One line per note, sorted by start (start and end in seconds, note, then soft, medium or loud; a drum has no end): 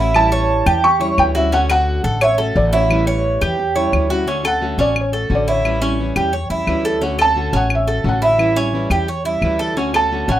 0.00 0.61 A1 loud
0.00 0.14 A3 medium
0.00 0.15 C#4 medium
0.00 0.31 E4 medium
0.00 0.14 F#4 medium
0.00 0.16 B5 loud
0.14 0.82 E3 medium
0.14 0.83 G3 medium
0.14 0.84 C#4 medium
0.14 0.84 E4 medium
0.14 0.86 A5 loud
0.14 claves medium
0.32 0.65 C#5 medium
0.66 1.14 E2 loud
0.66 1.00 G4 medium
0.66 claves medium
0.84 1.19 C#6 loud
0.84 muted nylon-string guitar stroke medium
1.00 1.17 G3 medium
1.00 1.18 C#4 medium
1.00 1.17 E4 medium
1.00 1.34 C#5 medium
1.17 1.98 D2 medium
1.17 1.34 E3 medium
1.17 1.35 G3 medium
1.17 1.35 C#4 medium
1.17 1.34 E4 medium
1.17 1.24 G5 loud
1.17 claves medium
1.35 1.53 G3 medium
1.35 1.52 C#4 medium
1.35 1.52 E4 medium
1.35 1.52 F#4 medium
1.35 1.52 E5 medium
1.52 2.20 D3 medium
1.52 2.22 A3 medium
1.52 1.69 C#4 medium
1.52 2.22 C#4 loud
1.52 2.21 F#4 medium
1.52 1.58 F#5 loud
1.70 2.03 F#4 medium
1.70 2.23 F#5 loud
1.70 claves medium
2.04 2.52 A1 medium
2.04 2.21 A4 medium
2.21 2.38 C#5 medium
2.21 2.57 E5 loud
2.21 muted nylon-string guitar stroke medium
2.21 claves medium
2.38 2.55 A3 medium
2.38 2.55 C#4 medium
2.38 2.55 F#4 medium
2.38 2.71 A4 medium
2.55 3.36 A1 loud
2.55 2.72 D3 medium
2.55 2.72 A3 medium
2.55 2.73 C#4 medium
2.55 2.72 F#4 medium
2.55 2.74 D5 loud
2.73 2.90 A3 medium
2.73 2.90 C#4 medium
2.73 3.06 E4 medium
2.73 2.89 F#4 medium
2.73 3.89 C#5 medium
2.90 3.57 E3 medium
2.90 3.58 G3 medium
2.90 3.58 C#4 medium
2.90 3.58 E4 medium
2.90 claves medium
3.07 3.40 C#5 medium
3.41 3.89 E2 medium
3.41 3.75 G4 medium
3.41 claves medium
3.59 muted nylon-string guitar stroke medium
3.75 3.92 G3 medium
3.75 3.93 C#4 medium
3.75 3.92 E4 medium
3.75 4.09 C#5 medium
3.93 4.73 D2 medium
3.93 4.09 E3 medium
3.93 4.10 G3 medium
3.93 4.10 C#4 medium
3.93 4.09 E4 medium
3.93 claves medium
4.10 4.26 G3 medium
4.10 4.27 C#4 medium
4.10 4.26 E4 medium
4.10 4.27 F#4 medium
4.26 4.43 D3 medium
4.26 4.44 A3 medium
4.26 4.44 C#4 medium
4.26 4.43 C#4 medium
4.26 4.42 F#4 medium
4.43 4.60 A3 soft
4.43 4.61 C#4 soft
4.43 4.60 F#4 medium
4.43 4.78 A4 medium
4.43 4.78 F#5 medium
4.43 claves medium
4.60 4.77 D3 medium
4.60 4.78 A3 medium
4.60 4.78 C#4 medium
4.60 4.77 F#4 medium
4.78 5.26 A1 medium
4.78 4.94 A3 soft
4.78 5.12 C#4 medium
4.78 4.94 C#4 soft
4.78 4.94 F#4 medium
4.78 4.96 D5 medium
4.95 muted nylon-string guitar stroke medium
4.95 claves medium
5.01 5.30 C#5 medium
5.12 5.29 A3 soft
5.12 5.29 C#4 soft
5.12 5.29 F#4 soft
5.12 5.46 A4 medium
5.29 6.10 A1 medium
5.29 5.63 D3 medium
5.29 5.64 A3 medium
5.29 5.64 C#4 medium
5.29 5.64 F#4 medium
5.35 5.49 D5 medium
5.48 5.81 E4 medium
5.48 5.81 C#5 medium
5.64 5.81 E3 medium
5.64 5.81 G3 medium
5.64 5.81 C#4 medium
5.64 5.80 E4 medium
5.64 claves medium
5.81 5.98 G3 soft
5.81 6.15 C#4 loud
5.81 5.99 C#4 soft
5.81 5.98 E4 medium
5.99 6.15 E3 medium
5.99 6.16 G3 medium
5.99 6.16 C#4 medium
5.99 6.15 E4 medium
6.16 6.48 E2 medium
6.16 6.32 G3 soft
6.16 6.33 C#4 medium
6.16 6.33 E4 soft
6.16 6.33 G4 medium
6.16 claves medium
6.33 6.50 C#5 medium
6.33 muted nylon-string guitar stroke medium
6.50 6.66 E2 medium
6.50 6.66 G3 soft
6.50 6.67 C#4 soft
6.50 6.84 E4 medium
6.50 6.67 E4 soft
6.67 7.47 D2 medium
6.67 7.01 E3 medium
6.67 7.01 G3 medium
6.67 7.02 C#4 medium
6.67 7.02 E4 medium
6.67 claves medium
6.85 7.02 A4 medium
7.01 7.18 D3 medium
7.01 7.18 A3 medium
7.01 7.18 C#4 medium
7.01 7.17 F#4 medium
7.18 7.35 A3 soft
7.18 7.35 C#4 medium
7.18 7.35 F#4 soft
7.18 7.52 A4 medium
7.18 7.52 A5 loud
7.18 claves medium
7.35 7.52 D3 medium
7.35 7.53 A3 medium
7.35 7.53 C#4 medium
7.35 7.52 F#4 medium
7.53 8.01 A1 loud
7.53 7.69 A3 soft
7.53 7.87 C#4 medium
7.53 7.69 C#4 soft
7.53 7.70 F#4 medium
7.53 7.72 F#5 medium
7.70 muted nylon-string guitar stroke medium
7.70 claves medium
7.75 8.05 E5 medium
7.87 8.03 A3 soft
7.87 8.04 C#4 soft
7.87 8.04 F#4 medium
7.87 8.21 A4 medium
8.04 8.85 A1 medium
8.04 8.38 D3 medium
8.04 8.38 A3 medium
8.04 8.39 C#4 medium
8.04 8.39 F#4 medium
8.09 8.24 F#5 medium
8.22 8.55 E4 medium
8.22 8.55 E5 medium
8.38 8.55 E3 medium
8.38 8.56 G3 medium
8.38 8.55 C#4 medium
8.38 8.55 E4 medium
8.38 claves medium
8.56 8.72 G3 soft
8.56 8.90 C#4 loud
8.56 8.73 C#4 soft
8.56 8.73 E4 medium
8.73 8.90 E3 medium
8.73 8.90 G3 medium
8.73 8.90 C#4 medium
8.73 8.90 E4 medium
8.90 9.38 E2 medium
8.90 9.08 G3 soft
8.90 9.08 C#4 soft
8.90 9.07 E4 medium
8.90 9.08 G4 medium
8.90 claves medium
9.08 9.25 C#5 medium
9.08 muted nylon-string guitar stroke medium
9.25 9.42 G3 soft
9.25 9.42 C#4 soft
9.25 9.42 E4 medium
9.25 9.59 E4 medium
9.42 10.22 D2 medium
9.42 9.76 E3 medium
9.42 9.77 G3 medium
9.42 9.77 C#4 medium
9.42 9.77 E4 medium
9.42 claves medium
9.59 9.76 A4 medium
9.76 9.93 D3 medium
9.76 9.94 A3 medium
9.76 9.94 C#4 medium
9.76 9.92 F#4 loud
9.94 10.11 A3 soft
9.94 10.11 C#4 soft
9.94 10.10 F#4 soft
9.94 10.28 A4 medium
9.94 10.27 A5 loud
9.94 claves medium
10.11 10.28 D3 medium
10.11 10.28 A3 medium
10.11 10.28 C#4 medium
10.11 10.27 F#4 medium
10.28 10.40 A1 medium
10.28 10.40 A3 soft
10.28 10.40 C#4 medium
10.28 10.40 C#4 soft
10.28 10.40 F#4 soft
10.28 10.40 F#5 medium